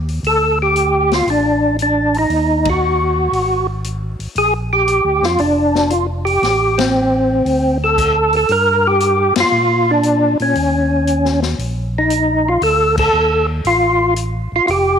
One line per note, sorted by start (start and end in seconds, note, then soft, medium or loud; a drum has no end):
0.00 0.20 D#2 medium
0.08 open hi-hat soft
0.23 1.23 D2 medium
0.23 0.59 A4 loud
0.23 open hi-hat soft
0.62 1.14 G4 medium
0.76 closed hi-hat soft
1.11 1.29 F4 medium
1.11 snare medium
1.11 open hi-hat soft
1.27 2.26 A1 medium
1.27 1.77 D4 medium
1.27 open hi-hat soft
1.79 2.17 D4 medium
1.79 closed hi-hat soft
2.14 open hi-hat soft
2.18 2.69 D#4 medium
2.29 3.29 D#2 medium
2.29 open hi-hat soft
2.65 kick medium
2.65 ride medium
2.70 3.67 F#4 medium
3.32 4.16 G#1 medium
3.32 open hi-hat soft
3.84 closed hi-hat soft
4.19 4.28 G#1 soft
4.19 open hi-hat soft
4.35 5.01 A#1 medium
4.35 4.54 G#4 loud
4.35 open hi-hat soft
4.73 5.26 G4 medium
4.88 closed hi-hat soft
5.04 5.21 D2 medium
5.21 5.38 F2 medium
5.21 5.41 F4 medium
5.21 snare soft
5.38 6.39 F1 medium
5.38 5.93 D4 medium
5.38 open hi-hat soft
5.75 snare soft
5.90 6.07 F4 medium
5.90 closed hi-hat soft
6.25 6.79 G4 medium
6.25 open hi-hat soft
6.42 7.42 A1 medium
6.42 snare soft
6.42 open hi-hat soft
6.78 7.78 C4 medium
6.78 snare medium
6.78 ride medium
7.45 8.45 D2 medium
7.45 open hi-hat soft
7.84 8.35 A4 medium
7.98 kick medium
7.98 closed hi-hat soft
7.98 crash medium
8.33 8.52 A4 medium
8.33 open hi-hat soft
8.49 9.33 G2 medium
8.49 8.88 A#4 loud
8.49 open hi-hat soft
8.87 9.34 G4 loud
9.00 closed hi-hat medium
9.36 9.44 G2 soft
9.36 snare medium
9.36 ride medium
9.40 9.92 F4 loud
9.52 10.36 A#2 medium
9.91 10.38 D4 loud
10.03 closed hi-hat medium
10.39 10.55 A#2 medium
10.39 11.40 C#4 medium
10.39 open hi-hat soft
10.55 11.55 D#2 medium
10.55 open hi-hat soft
11.07 closed hi-hat medium
11.25 snare soft
11.42 snare soft
11.59 12.58 A#1 medium
11.59 open hi-hat soft
11.98 12.50 D#4 medium
12.10 closed hi-hat medium
12.48 12.62 F4 medium
12.61 13.10 D2 medium
12.61 12.96 A4 loud
12.61 open hi-hat soft
12.98 13.47 A4 medium
12.98 kick medium
12.98 crash medium
13.13 13.61 D#2 medium
13.64 14.48 A1 medium
13.64 14.14 F4 loud
13.64 open hi-hat soft
14.16 closed hi-hat medium
14.52 14.60 A1 soft
14.52 14.66 F4 medium
14.67 14.99 F1 medium
14.67 14.70 F4 medium
14.67 14.99 G4 medium
14.67 open hi-hat soft